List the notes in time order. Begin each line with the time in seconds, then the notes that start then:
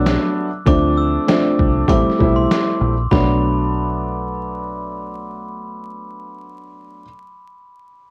Already playing: B1 F#3 A3 B3 D4
0.06 snare, closed hi-hat
0.66 D2 F3 A3 C4 D4 D6, kick, closed hi-hat
0.97 E6
1.27 F3 A3 C4 D4, snare, closed hi-hat
1.59 C2, kick
1.88 A1 G3 A3 C4 E4 D6, kick, closed hi-hat
2.10 snare
2.19 B1 G3 A3 C4 E4, kick
2.36 C6
2.51 snare, closed hi-hat
2.81 A#1
3.11 B1 F#3 A3 B3 D4 B5, kick, snare